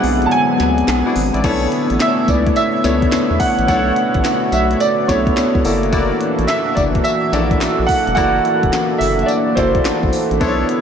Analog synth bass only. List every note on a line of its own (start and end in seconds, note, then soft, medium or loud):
0.04 0.27 B1 medium
0.60 0.83 D2 medium
0.88 1.03 B1 medium
1.16 1.31 G#1 medium
1.34 1.43 A1 medium
1.44 1.67 B1 loud
1.91 1.99 A1 medium
2.28 2.52 C#2 loud
2.85 3.08 C#2 loud
3.12 3.20 E2 medium
3.31 3.39 E2 medium
3.59 3.67 A1 medium
3.68 3.92 B1 loud
4.15 4.23 A1 medium
4.52 4.76 B1 loud
5.09 5.32 B1 medium
5.37 5.44 C#2 medium
5.55 5.63 C#2 medium
5.65 6.12 F#1 medium
6.39 6.47 A1 medium
6.77 7.00 F#1 loud
7.33 7.56 A#1 medium
7.61 7.68 A#1 soft
7.79 7.88 A#1 loud
8.07 8.16 E1 medium
8.17 8.40 F#1 loud
8.64 8.72 E1 medium
9.01 9.24 F#1 loud
9.57 9.80 F#1 medium
9.85 9.92 A1 medium
10.03 10.12 A1 medium
10.31 10.40 A1 medium
10.41 10.65 B1 loud